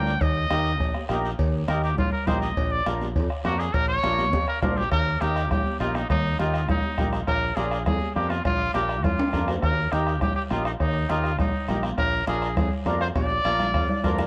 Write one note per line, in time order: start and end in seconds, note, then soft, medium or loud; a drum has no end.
0.00 0.16 D2 loud
0.00 0.12 D4 medium
0.00 0.12 F4 medium
0.00 0.12 A#4 medium
0.00 0.23 G5 medium
0.07 short guiro medium
0.21 0.45 D#2 loud
0.21 1.07 D#5 loud
0.21 bombo low medium
0.21 cowbell loud
0.21 high conga soft
0.21 long guiro medium
0.50 0.80 D#2 medium
0.50 0.71 D#4 medium
0.50 0.71 G4 medium
0.50 0.71 A#4 medium
0.50 bombo rim medium
0.50 cowbell medium
0.50 high conga medium
0.50 short guiro medium
0.66 short guiro medium
0.80 0.92 A#1 medium
0.80 bombo low medium
0.80 cowbell medium
0.80 high conga soft
0.80 long guiro medium
0.95 bombo rim medium
0.95 high conga medium
1.09 1.33 A#1 loud
1.09 1.30 D#4 medium
1.09 1.30 G4 medium
1.09 1.30 A#4 medium
1.09 bombo rim medium
1.09 cowbell medium
1.09 high conga medium
1.09 short guiro medium
1.25 short guiro medium
1.39 1.63 D#2 loud
1.39 bombo low medium
1.39 cowbell loud
1.39 high conga soft
1.39 long guiro medium
1.67 1.98 D#2 medium
1.67 1.89 D#4 medium
1.67 1.89 G4 medium
1.67 1.89 A#4 medium
1.67 1.83 A#4 medium
1.67 bombo rim medium
1.67 cowbell medium
1.67 high conga medium
1.67 short guiro medium
1.83 1.98 G4 medium
1.83 short guiro medium
1.98 2.10 A#1 medium
1.98 2.12 F4 medium
1.98 bombo low medium
1.98 cowbell medium
1.98 high conga soft
1.98 low conga medium
1.98 long guiro medium
2.12 2.28 A#4 medium
2.26 2.51 A#1 loud
2.26 2.48 D#4 medium
2.26 2.48 G4 medium
2.26 2.48 A#4 medium
2.26 2.41 C5 medium
2.26 bombo low medium
2.26 bombo rim medium
2.26 cowbell medium
2.26 high conga medium
2.26 low conga medium
2.26 short guiro medium
2.41 2.73 D#5 medium
2.41 short guiro medium
2.56 2.80 A#1 loud
2.56 bombo low medium
2.56 cowbell loud
2.56 high conga soft
2.56 long guiro medium
2.71 2.86 D5 medium
2.86 3.17 A#1 medium
2.86 3.06 D4 medium
2.86 3.07 F4 medium
2.86 3.07 A#4 medium
2.86 bombo rim medium
2.86 cowbell medium
2.86 high conga medium
2.86 short guiro medium
3.01 high conga medium
3.01 short guiro medium
3.15 3.27 F2 loud
3.15 bombo low medium
3.15 cowbell medium
3.15 high conga soft
3.15 long guiro medium
3.30 bombo rim medium
3.45 3.68 F2 loud
3.45 3.65 D4 medium
3.45 3.65 F4 medium
3.45 3.60 F#4 loud
3.45 3.66 A#4 medium
3.45 bombo rim medium
3.45 cowbell medium
3.45 high conga medium
3.45 short guiro medium
3.59 3.75 G#4 medium
3.59 short guiro medium
3.74 3.98 A#1 loud
3.74 3.88 A#4 loud
3.74 bombo low medium
3.74 cowbell loud
3.74 high conga soft
3.74 long guiro medium
3.88 4.46 C#5 loud
4.03 4.33 A#1 medium
4.03 4.24 D4 medium
4.03 4.24 F4 medium
4.03 4.24 A#4 medium
4.03 bombo rim medium
4.03 cowbell medium
4.03 high conga medium
4.03 short guiro medium
4.18 high conga medium
4.18 short guiro medium
4.33 4.45 F2 loud
4.33 bombo low medium
4.33 cowbell medium
4.33 high conga loud
4.33 long guiro medium
4.48 4.62 A#4 loud
4.48 bombo rim medium
4.61 4.86 A#1 loud
4.61 4.83 D4 medium
4.61 4.83 F4 medium
4.61 4.78 A#4 medium
4.61 4.83 C5 medium
4.61 bombo low medium
4.61 bombo rim medium
4.61 cowbell medium
4.61 low conga medium
4.61 low timbale medium
4.61 short guiro medium
4.77 4.91 G4 loud
4.77 low conga medium
4.77 short guiro medium
4.91 5.15 D#2 loud
4.91 5.22 A#4 loud
4.91 bombo low medium
4.91 bombo rim medium
4.91 cowbell loud
4.91 high conga soft
4.91 long guiro medium
5.21 5.50 D#2 medium
5.21 5.42 D#4 medium
5.21 5.50 G4 loud
5.21 5.42 G4 medium
5.21 5.42 A#4 medium
5.21 bombo rim medium
5.21 cowbell medium
5.21 high conga medium
5.21 short guiro medium
5.36 bombo rim medium
5.36 short guiro medium
5.50 5.62 A#1 medium
5.50 5.78 G4 medium
5.50 bombo low medium
5.50 bombo rim medium
5.50 cowbell medium
5.50 high conga soft
5.50 low conga medium
5.50 long guiro medium
5.66 high conga medium
5.80 6.04 A#1 loud
5.80 6.01 D#4 medium
5.80 5.97 F4 medium
5.80 6.01 G4 medium
5.80 6.01 A#4 medium
5.80 bombo rim medium
5.80 cowbell medium
5.80 high conga medium
5.80 short guiro medium
5.95 6.09 D#4 medium
5.95 bombo rim medium
5.95 high conga medium
5.95 short guiro medium
6.09 6.33 D#2 loud
6.09 6.37 D#4 loud
6.09 bombo low medium
6.09 bombo rim medium
6.09 cowbell loud
6.09 high conga soft
6.09 low conga medium
6.09 long guiro medium
6.39 6.69 D#2 medium
6.39 6.60 D#4 medium
6.39 6.67 F4 medium
6.39 6.60 G4 medium
6.39 6.60 A#4 medium
6.39 bombo rim medium
6.39 cowbell medium
6.39 high conga medium
6.39 short guiro medium
6.54 bombo rim medium
6.54 short guiro medium
6.68 6.81 A#1 loud
6.68 7.10 D#4 medium
6.68 bombo low medium
6.68 bombo rim medium
6.68 cowbell medium
6.68 high conga soft
6.68 low conga medium
6.68 long guiro medium
6.84 high conga medium
6.98 7.22 A#1 loud
6.98 7.18 D#4 medium
6.98 7.19 G4 medium
6.98 7.19 A#4 medium
6.98 bombo low medium
6.98 bombo rim medium
6.98 cowbell medium
6.98 high conga medium
6.98 low conga medium
6.98 short guiro medium
7.13 bombo rim medium
7.13 short guiro medium
7.27 7.51 A#1 loud
7.27 7.57 A#4 loud
7.27 bombo low medium
7.27 bombo rim medium
7.27 cowbell loud
7.27 high conga soft
7.27 long guiro medium
7.56 7.88 A#1 medium
7.56 7.77 D4 medium
7.56 7.78 F4 medium
7.56 7.85 G#4 medium
7.56 7.78 A#4 medium
7.56 bombo rim medium
7.56 cowbell medium
7.56 high conga medium
7.56 short guiro medium
7.71 bombo rim medium
7.71 short guiro medium
7.86 7.98 F2 loud
7.86 8.14 G#4 medium
7.86 bombo low medium
7.86 bombo rim medium
7.86 cowbell medium
7.86 high conga soft
7.86 low conga medium
7.86 long guiro medium
8.01 high conga medium
8.15 8.40 F2 loud
8.15 8.36 D4 medium
8.15 8.36 F4 medium
8.15 8.31 G4 medium
8.15 8.36 A#4 medium
8.15 bombo rim medium
8.15 cowbell medium
8.15 high conga medium
8.15 short guiro medium
8.30 8.44 F4 medium
8.30 bombo rim medium
8.30 high conga medium
8.30 short guiro medium
8.45 8.69 A#1 loud
8.45 8.72 F4 loud
8.45 bombo low medium
8.45 bombo rim medium
8.45 cowbell loud
8.45 high conga soft
8.45 low conga medium
8.45 long guiro medium
8.74 9.04 A#1 medium
8.74 8.95 D4 medium
8.74 8.95 F4 medium
8.74 9.05 G4 medium
8.74 8.95 A#4 medium
8.74 bombo rim medium
8.74 cowbell medium
8.74 high conga medium
8.74 short guiro medium
8.89 bombo rim medium
8.89 short guiro medium
9.04 9.16 F2 medium
9.04 9.48 F4 medium
9.04 bombo low medium
9.04 bombo rim medium
9.04 cowbell medium
9.04 high conga soft
9.04 low conga medium
9.04 long guiro medium
9.19 high timbale loud
9.33 9.57 F2 medium
9.33 9.54 D4 medium
9.33 9.54 F4 medium
9.33 9.54 A#4 medium
9.33 bombo low medium
9.33 bombo rim medium
9.33 cowbell medium
9.33 high conga medium
9.33 high timbale medium
9.33 short guiro medium
9.48 bombo rim medium
9.48 low timbale loud
9.48 short guiro medium
9.62 9.86 D#2 loud
9.62 9.93 A#4 loud
9.62 bombo low medium
9.62 bombo rim medium
9.62 cowbell loud
9.62 long guiro medium
9.92 10.21 D#2 medium
9.92 10.13 D#4 medium
9.92 10.21 G4 medium
9.92 10.13 G4 medium
9.92 10.13 A#4 medium
9.92 bombo rim medium
9.92 cowbell medium
9.92 high conga medium
9.92 short guiro medium
10.07 bombo rim medium
10.07 short guiro medium
10.21 10.33 A#1 loud
10.21 10.35 G4 medium
10.21 bombo low medium
10.21 bombo rim medium
10.21 cowbell medium
10.21 high conga soft
10.21 low conga medium
10.21 long guiro medium
10.36 10.43 G4 medium
10.51 10.75 A#1 loud
10.51 10.71 D#4 medium
10.51 10.64 F4 medium
10.51 10.72 G4 medium
10.51 10.72 A#4 medium
10.51 bombo rim medium
10.51 cowbell medium
10.51 high conga medium
10.51 short guiro medium
10.65 10.72 D#4 medium
10.65 bombo rim medium
10.65 short guiro medium
10.80 11.04 D#2 loud
10.80 11.11 D#4 loud
10.80 bombo low medium
10.80 bombo rim medium
10.80 cowbell loud
10.80 high conga soft
10.80 long guiro medium
11.09 11.39 D#2 medium
11.09 11.30 D#4 medium
11.09 11.39 F4 medium
11.09 11.30 G4 medium
11.09 11.31 A#4 medium
11.09 bombo rim medium
11.09 cowbell medium
11.09 high conga medium
11.09 short guiro medium
11.24 bombo rim medium
11.24 short guiro medium
11.38 11.51 A#1 medium
11.38 11.80 D#4 medium
11.38 bombo low medium
11.38 bombo rim medium
11.38 cowbell medium
11.38 high conga soft
11.38 low conga medium
11.38 long guiro medium
11.68 11.92 A#1 medium
11.68 11.89 D#4 medium
11.68 11.89 G4 medium
11.68 11.89 A#4 medium
11.68 bombo rim medium
11.68 cowbell medium
11.68 high conga medium
11.68 low conga medium
11.68 short guiro medium
11.83 bombo rim medium
11.83 high conga medium
11.83 short guiro medium
11.98 12.22 A#1 loud
11.98 12.25 A#4 loud
11.98 bombo low medium
11.98 bombo rim medium
11.98 cowbell loud
11.98 high conga soft
11.98 long guiro medium
12.27 12.58 A#1 medium
12.27 12.48 D4 medium
12.27 12.48 F4 medium
12.27 12.55 G#4 medium
12.27 12.48 A#4 medium
12.27 bombo rim medium
12.27 cowbell medium
12.27 high conga loud
12.27 short guiro medium
12.42 bombo rim medium
12.42 short guiro medium
12.57 12.69 F2 medium
12.57 12.71 G#4 medium
12.57 bombo low medium
12.57 bombo rim medium
12.57 cowbell medium
12.57 high conga soft
12.57 low conga medium
12.57 long guiro medium
12.86 13.10 F2 loud
12.86 13.07 D4 medium
12.86 13.07 F4 medium
12.86 13.07 A#4 medium
12.86 bombo rim medium
12.86 cowbell medium
12.86 high conga medium
12.86 low timbale medium
12.86 short guiro medium
13.01 13.08 C5 medium
13.01 bombo rim medium
13.01 short guiro medium
13.15 13.39 A#1 loud
13.15 14.15 D5 loud
13.15 bombo low medium
13.15 bombo rim medium
13.15 cowbell loud
13.15 high conga medium
13.15 long guiro medium
13.30 high conga medium
13.45 13.76 A#1 medium
13.45 13.65 D4 medium
13.45 13.72 F4 loud
13.45 13.66 F4 medium
13.45 13.66 A#4 medium
13.45 bombo rim medium
13.45 cowbell medium
13.45 high conga medium
13.45 short guiro medium
13.60 bombo rim medium
13.60 low conga medium
13.60 short guiro medium
13.74 13.86 F2 medium
13.74 13.91 F4 medium
13.74 bombo low medium
13.74 bombo rim medium
13.74 cowbell medium
13.74 long guiro medium
13.89 14.05 D4 medium
13.89 low conga medium
14.03 14.27 F2 medium
14.03 14.27 A#3 medium
14.03 14.24 D4 medium
14.03 14.24 F4 medium
14.03 14.25 A#4 medium
14.03 bombo low medium
14.03 bombo rim medium
14.03 cowbell medium
14.03 low conga medium
14.03 low timbale medium
14.03 short guiro medium
14.18 bombo rim medium
14.18 low conga medium
14.18 short guiro medium